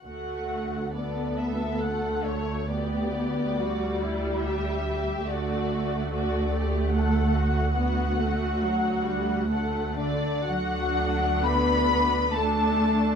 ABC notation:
X:1
M:3/4
L:1/8
Q:1/4=70
K:D
V:1 name="Violin section"
f2 d e f c | d4 e2 | d2 d2 f2- | f4 f d |
f2 b2 a2 |]
V:2 name="Violin section"
F2 A4 | G2 F E G G | F2 F G A F | F4 A D |
F2 B2 A2 |]
V:3 name="Viola section"
A,2 B,2 A,2 | B,2 G,4 | A,6 | B, A, F, G, A,2 |
[A,D]4 [A,D]2 |]
V:4 name="Cello section" clef=bass
D,,6- | D,,6 | D,,6- | D,,4- D,, D, |
F,2 B,2 A,2 |]
V:5 name="Double bass section" clef=bass
D,,6- | D,,6 | D,,6- | D,,6 |
D,,6 |]